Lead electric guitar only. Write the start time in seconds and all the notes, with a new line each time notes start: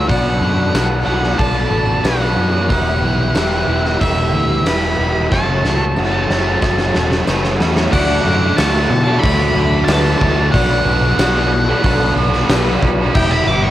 0.08 F#5
1.06 F#5
1.38 A5
2.04 F#5
2.70 F#5
4.01 E5
4.67 B5
5.32 A5
7.92 F#5
8.57 A5
9.04 A5
9.19 B5
9.85 A5
10.52 F#5
11.18 F#5
13.15 G5
13.31 B5
13.47 D6
13.64 C#6